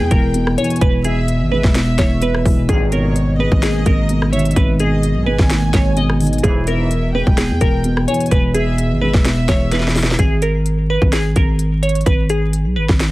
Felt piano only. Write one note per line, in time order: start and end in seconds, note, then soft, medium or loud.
0.00 0.11 E2 medium
0.00 0.33 B2 medium
0.00 0.82 G#3 medium
0.00 1.05 B3 loud
0.11 0.80 E2 medium
0.35 1.04 B2 medium
0.58 1.75 E3 medium
0.82 1.97 E2 medium
1.05 2.20 B2 medium
1.53 2.69 G#3 medium
1.75 2.69 B3 loud
1.99 2.69 E2 medium
2.21 2.69 B2 medium
2.45 2.69 E3 medium
2.69 3.85 G#2 loud
2.93 4.08 B2 medium
3.39 4.56 G#3 medium
3.63 4.80 A#3 loud
3.86 4.55 G#2 medium
4.10 4.78 B2 medium
4.32 5.50 D#3 medium
4.56 5.72 G#2 loud
4.80 5.95 B2 medium
5.28 6.44 G#3 medium
5.51 6.44 A#3 loud
5.74 6.44 G#2 medium
5.96 6.44 B2 medium
6.21 6.44 D#3 medium
6.44 7.59 E2 medium
6.67 7.83 B2 medium
7.15 8.32 G#3 medium
7.38 8.55 B3 loud
7.61 8.30 E2 medium
7.85 8.54 B2 medium
8.08 9.25 E3 medium
8.55 9.70 B2 medium
9.03 10.19 G#3 medium
9.25 10.19 B3 loud
9.49 10.19 E2 medium
9.71 10.19 B2 medium
9.95 10.19 E3 medium